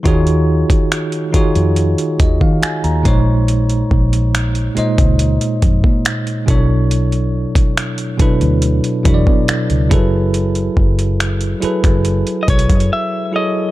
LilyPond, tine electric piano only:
\new Staff \with { instrumentName = "Tine electric piano" } { \time 4/4 \key ges \major \tempo 4 = 70 << { r2 r8 ees''16 f''16 aes''16 bes''8 r16 | r1 | r1 | r1 | } \\ { <ees ees' f' ges' aes' des''>4. <ees ees' f' ges' aes' des''>4 r4 <bes, aes ees' c'' des''>8~ | <bes, aes ees' c'' des''>4. <bes, aes ees' c'' ees''>2 <b, fis d' e' a' cis''>8~ | <b, fis d' e' a' cis''>4. <b, fis d' e' a' b'>4 <b, fis d' e' a' cis'' d''>4 <ges fes' aes' a' ces''>8~ | <ges fes' aes' a' ces''>4. <ges fes' aes' a' ces''>2 <ges fes' aes' a' des''>8 | } >> }